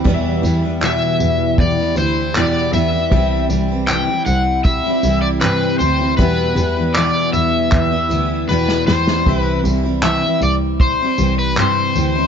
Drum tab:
TB |--x---x---x---x-|--x---x---x---x-|--x---x---x-----|--x---x---x---x-|
CP |----x-------x---|----x-------x---|----x---x-------|----x-------x---|
SD |----------------|----------------|-------------ooo|----------------|
BD |o-------o-------|o-------o-------|o-------o-------|o-------o-------|